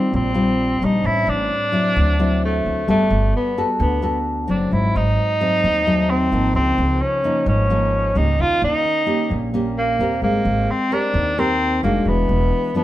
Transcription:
Already playing: G3 C4 F4
0.12 A#1 A#2 C4
0.34 G3 C4 F4
0.82 A#1 G3 C4 D4 D#4
1.04 A1 A2 E4
1.27 A1 D4
1.72 F#3 C4 E4
1.96 D2 D3
2.19 F#3 C4 E4
2.45 A3
2.66 D2
2.87 G1 G3 A3 B3 F#4 A4
3.10 G1
3.36 B3
3.57 B3 F#4 A4
3.80 D2 D3 B3
4.02 B3 F#4 A4
4.47 F#1 F#3 C4 D4
4.71 G#1 G#2 E4
4.96 G#1 D#4
5.41 F#3 A3 C4
5.63 D#2 D#3
5.87 F#3 A3 C4
6.10 C4
6.32 G#1 F3 A#3 D#4
6.55 C#2 C#3 C4
6.78 C#2
7.02 C#4
7.24 F3 A#3 D#4
7.46 G#1 G#2 C#4
7.70 F3 A#3 D#4
8.15 C#2 A#3 C#4 D#4 G4
8.39 D#2 D#3 F4
8.62 D#2 D#4
9.06 A#3 C#4 G4
9.29 A#1 A#2
9.54 A#3 C#4 G4
9.78 A#3
9.99 D#2 C4 G4 A#4
10.22 G#1 G#3 A#3
10.45 G#1
10.71 C4
10.91 C4 D4 G4 A#4
11.14 D#2 D#3
11.38 C4 G4 A#4
11.83 F1 G#3 A#3 D4 F#4
12.05 E1 E3 B3
12.29 E1
12.74 F3 B3 D4

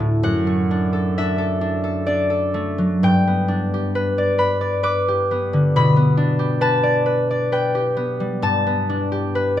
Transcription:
Already playing: D2 A3 D4 F#4 A4 D5 F#5 A5
0.00 A2
0.23 F#2 F#5
0.47 A3
0.71 D4
0.93 A4
1.18 D4 E5
1.38 A4
1.61 D4
1.84 A4
2.06 D4 D5
2.30 A4
2.54 A3
2.78 F#3
3.03 G2 G5
3.27 B3
3.48 D4
3.74 G4
3.95 B4
4.18 D5
4.38 B4 B5
4.61 D5
4.83 B4 D6
5.08 G4
5.31 B3
5.53 D3
5.76 B2 B5
5.96 B3
6.17 D4
6.39 G4
6.61 B4 A5
6.83 D5
7.06 B4
7.31 D5
7.52 B4 G5
7.75 G4
7.97 B3
8.20 G3
8.42 G2 A5
8.67 B3
8.89 D4
9.12 G4
9.35 B4

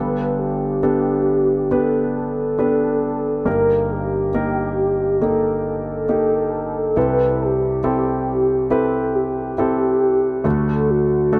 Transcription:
Already playing: G1 G2 B3 D4 G4 A4 B4
0.39 G4
0.83 B3 D4 G4 A4
1.71 B3 D4 G4 A4 B4
2.16 A4
2.59 B3 D4 G4 B4
3.45 G1 G2 A#3 D#4 G4 A#4
3.91 G4
4.34 A#3 D#4 G4 A#4
5.21 A#3 D#4 G4 A4
5.68 A4
6.09 A#3 D#4 G4
6.96 C2 C3 C4 E4 G4 A4 B4
7.42 G4
7.84 C4 E4 G4 A4
8.70 C4 E4 G4 A4 B4
9.15 G4
9.58 C4 E4 G4 A4
10.44 D2 D3 A3 D4 F#4 A4
10.91 F#4
11.32 A3 D4 F#4 A4

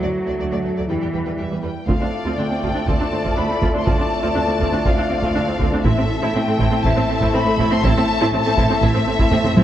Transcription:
Already playing: D3 F#3 A3 F#4
0.01 D2 A3 D5
0.26 D2 A3 D5
0.39 D2 A3 D5
0.51 D2 A3 D5
0.63 D2 A3 A4
0.77 D2 A3 D5
0.88 E2 B2 E3 G3 E4 B4 G5
1.01 E2 G3 G4 E5
1.13 E2 G3 B4 G5
1.26 E2 G3 B4 G5
1.38 E2 G3 G4 E5
1.50 E2 G3 B4
1.63 E2 G3 B4 G5
1.88 D2 A2 A3 C4 F4 A4 D5 F5, taiko
2.00 D2 C4 D4
2.25 D2 C4 F4
2.37 D2 C4 D4 G5
2.50 D2 C4
2.63 D2 C4 F4, taiko
2.74 D2 C4 D4
2.87 D2 C4 F4 A5, taiko
3.00 D2 C4 D4
3.12 D2 C4
3.24 D2 C4 F4, taiko
3.36 D2 C4 D4 B5
3.49 D2 C4
3.61 D2 C4 F4, taiko
3.74 D2 C4 D4 C6
3.86 D2 C4 F4 A5, taiko
3.98 D2 C4 D4
4.22 D2 C4 F4
4.35 D2 C4 D4
4.48 D2 C4
4.60 D2 C4 F4, taiko
4.72 D2 C4 D4
4.84 D2 C4 F4 F5, taiko
4.98 D2 C4 D4
5.10 D2 C4
5.22 D2 C4 F4, taiko
5.34 D2 C4 D4
5.48 D2 C4
5.59 D2 C4 F4, taiko
5.72 D2 C4 D4
5.84 A1 A2 A3 C4 E4 A4 E5, taiko
5.98 A2 C4
6.22 A2 C4 E4
6.34 A1 A2 C4 G5
6.47 A2 A3 C4
6.58 A1 A2 C4 E4, taiko
6.71 A2 C4
6.83 A1 A2 C4 E4 A5, taiko
6.96 A2 C4
7.08 A1 A2 A3 C4
7.21 A2 C4 E4, taiko
7.33 A1 A2 C4 B5
7.46 A2 A3 C4
7.58 A1 A2 C4 E4, taiko
7.71 A2 C4 C6
7.82 A1 A2 C4 E4 A5, taiko
7.96 A2 C4
8.21 A2 C4 E4
8.32 A1 A2 C4
8.46 A2 A3 C4
8.57 A1 A2 C4 E4, taiko
8.70 A2 C4
8.82 A1 A2 C4 E4 E5, taiko
8.94 A2 C4
9.06 A1 A2 A3 C4
9.19 A2 C4 E4, taiko
9.31 A1 A2 C4, taiko low-mid
9.44 A2 A3 C4, taiko low-mid
9.56 A1 A2 C4 E4, taiko high

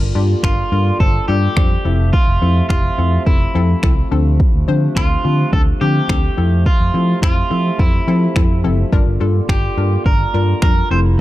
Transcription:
Already playing: D3 G3 A#3 F4
0.01 G1
0.15 G2 G3 D4 F4 G4
0.43 G1 G3 D4 F4 A#4, finger snap, kick
0.72 G2 G3 D4 F4 A#4
1.00 G1 G3 D4 F4 A4 C5, kick
1.28 G2 G3 D4 F4 G4 A4
1.56 F2 G3 D4 F4 C5, finger snap, kick
1.85 F1 C3 F3 A3 C4 E4 A4 E5
2.13 F4, kick
2.28 F1
2.42 F2 F3 C4 E4 A4
2.69 F1 F3 C4 E4 F4 G4, finger snap, kick
2.98 F2 F3 C4 E4 A4
3.26 F1 F3 C4 E4 A4, kick
3.55 F2 F3 C4 E4 A4
3.83 C2 F3 C4 E4 A4, finger snap, kick
4.11 D2 C3 F3 C4 D4 A4
4.40 kick
4.54 D2
4.68 D3 F3 C4 D4 C5
4.96 D2 F3 C4 D4 F4 A4, finger snap, kick
5.24 D3 F3 C4 D4 F4
5.53 D2 F3 C4 D4 A4, kick
5.81 D3 F3 C4 D4 G4
6.09 D2 F3 C4 D4 A4, finger snap, kick
6.37 F2 C3 F3 C4 E4 A4 E5
6.66 F4, kick
6.80 F2
6.94 F3 C4 E4 A4
7.22 F2 F3 C4 E4 F4 C5, finger snap, kick
7.50 F3 C4 E4 A4
7.79 F2 F3 C4 E4 A4, kick
8.08 F3 C4 E4 A4
8.36 F2 F3 C4 E4 A4, finger snap, kick
8.64 F#1 F3 C4 E4 A4
8.92 G1 D3 G3 A#3 D4 F4 A#4, kick
9.07 G1
9.20 G2 G3 D4 F4 A4
9.49 G1 G3 D4 F4 G4, finger snap, kick
9.77 G2 G3 D4 F4 A#4
10.06 G1 G3 D4 F4 A#4, kick
10.34 G2 G3 D4 F4 A#4
10.62 F2 G3 D4 F4 A#4, finger snap, kick
10.91 F1 C3 F3 A3 C4 E4 A4 C5

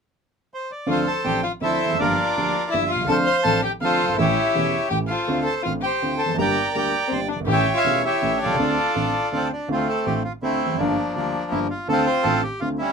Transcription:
0.54 C5
0.71 D5
0.87 D2 D3 F3 C4 D4 F4 A4 F5
0.91 A4 C5
1.04 A4 A5
1.24 A1 A2 F3 C4 D4 G4 A4 G5
1.43 F4 F5
1.61 D2 D3 F3 C4 D4 E4 A4 C5 E5
1.86 E2
1.91 F2
1.95 F#2 D4
1.99 G1 G2 F3 A#3 D4 F4 G4 A#4 D5
2.37 D2 D3 F3 A#3 D4 G4
2.69 G2 E4 G4 E5
2.73 G1 F3 A#3 D4
2.88 F4 F5
2.96 B1
3.01 C2 C#2
3.07 D2 D3 F3 C4 D4 A4 C5 A5
3.12 F5
3.25 C5 C6
3.43 A1 A2 F3 C4 D4 A4 A5
3.62 G4 G5
3.81 D2 D3 F3 C4 D4 F4 A4 C5 F5
4.03 F#1
4.09 G1
4.14 G#1 E4 E5
4.18 A1 A2 E3 A3 C#4 G4 C#5
4.55 E1 E2 E3 A3 C#4 G4
4.89 A1 A2 E3 A3 C#4 G4 G5
5.07 F4 A4 F5
5.11 C5
5.28 D2 D3 A3 C4 F4
5.43 A4 A5
5.62 A1 A2 D3 A3 C4 F4 F5
5.81 G4 G5
5.86 C5
6.02 D2 D3 A3 C4 F4
6.17 A4 A5
6.26 E2 F2
6.34 F#2 G2 D3 A#3 G4 A#4
6.38 G1 G3 D5 G5 A#5
6.73 D2 D3 G3 A#3 G4 A#4 A#5
6.77 D5 G5
7.08 G3 C4
7.12 G1 G2 D3 A#3 G4 C5
7.28 D4 D5
7.36 F#1
7.40 G1
7.44 G#1 A1 A2 E3 A3 C#4 G4
7.50 C#5 E5 G5
7.74 F4 F5
7.79 C#5
7.85 E1 E2 E3 A3 C#4 G4
8.04 E4 G4 C#5 E5
8.22 A1 A2 E3 A3 C#4 G4
8.38 D4
8.43 B1 F4 A4 D5
8.49 C2
8.55 C#2 D3 A3 C4
8.59 D2 F4
8.95 A1 A2 D3 A3 C4 F4
9.32 D2 D3 A3 C4 F4
9.36 C4
9.52 D4
9.68 D2 D3 A3 C4 F4
9.73 A3 C4
9.89 A4
10.06 A1 A2 D3 A3 C4 F4 G4
10.24 F4
10.42 D2 D3 A3 C4 E4 F4
10.66 E2
10.71 F2
10.76 F#2 F3 A#3 D4
10.80 G1 G2 D3 G3 A#3 F4
11.14 D2 D3 F3 G3 A#3 D4 F4
11.51 G1 G2 D3 G3 A#3 E4 F4
11.70 F4
11.88 D2 D3 A3 C4 F4 A4
12.06 C5
12.23 A1 A2 D3 A3 C4 F4 A4
12.43 G4
12.60 D2 D3 A3 C4 F4
12.78 G3 C#4 E4

